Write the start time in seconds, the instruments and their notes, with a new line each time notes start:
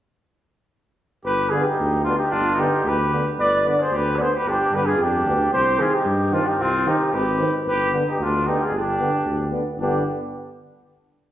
1.24 tuba G1, trumpet G4, flugelhorn B4
1.49 euphonium D3, french horn B3, trumpet F4, flugelhorn G#4
1.63 trumpet D#4, flugelhorn G4
1.79 tuba D2
2.04 euphonium D3, french horn B3, trumpet D4, flugelhorn F4
2.17 trumpet D#4, flugelhorn G4
2.29 tuba G1, trumpet D4, flugelhorn F4
2.54 euphonium D3, trumpet D#4
2.59 french horn B3, flugelhorn G4
2.83 tuba D2, trumpet G4
2.88 flugelhorn B4
3.12 euphonium D3, french horn B3
3.38 tuba G1, trumpet B4, flugelhorn D5
3.64 euphonium D3, french horn B3, trumpet B4
3.69 flugelhorn D5
3.79 trumpet G#4, flugelhorn C5
3.91 tuba D2, trumpet G4
3.96 flugelhorn B4
4.16 euphonium D3, french horn B3, trumpet B4, flugelhorn D5
4.21 trumpet G#4, flugelhorn C5
4.30 trumpet G#4, flugelhorn C5
4.34 trumpet G4, flugelhorn B4
4.44 tuba G1, trumpet D4
4.49 flugelhorn G4
4.70 tuba G2, euphonium D3, french horn B3
4.75 trumpet G4, flugelhorn B4
4.86 trumpet F4, flugelhorn G#4
4.98 tuba F2, flugelhorn G4
5.03 trumpet D4
5.23 tuba D2, euphonium D3, french horn B3
5.52 tuba C2, trumpet G4, flugelhorn C5
5.79 euphonium D#3, french horn C4, trumpet F4, flugelhorn G#4
5.93 trumpet D#4, flugelhorn G4
6.05 tuba G2
6.31 euphonium D#3, french horn C4, trumpet D4, flugelhorn F4
6.46 trumpet D#4, flugelhorn G4
6.58 tuba C2, trumpet C4, flugelhorn F4
6.85 euphonium D#3, french horn C4, trumpet D#4, flugelhorn G4
7.12 tuba G#1, trumpet G4, flugelhorn B4
7.38 euphonium D#3, french horn C4
7.65 tuba G1, trumpet G4, flugelhorn B4
7.92 euphonium D3, french horn B3
8.07 trumpet D#4, flugelhorn G4
8.19 tuba D2, trumpet D4, flugelhorn F4
8.46 euphonium D3, french horn B3, trumpet D#4, flugelhorn G4
8.62 trumpet F4, flugelhorn G#4
8.70 tuba G1
8.75 trumpet D4, flugelhorn G4
8.98 euphonium D3, french horn B3
9.25 tuba D2
9.51 euphonium D3, french horn B3
9.77 tuba G1, euphonium D3, french horn B3, trumpet D4, flugelhorn G4